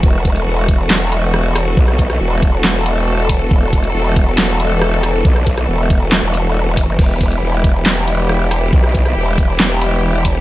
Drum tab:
CC |----------------|----------------|----------------|----------------|
HH |--xx--x---x---o-|--xx--x---x---o-|--xx--x---x---o-|--xx--x---x---o-|
CP |--------x-------|--------x-------|--------x-------|--------x-------|
SD |--------o---r-r-|-r-r----o-------|--------o---r-r-|-r-r----o-------|
BD |o-o---o---------|o-o---o-------o-|o-o---o---------|o-o---o-------o-|

CC |x---------------|----------------|
HH |--xx--x---x---o-|--xx--x---x---o-|
CP |--------x-------|--------x-------|
SD |--------o---r-r-|-r-r----o-------|
BD |o-o---o---------|o-o---o-------o-|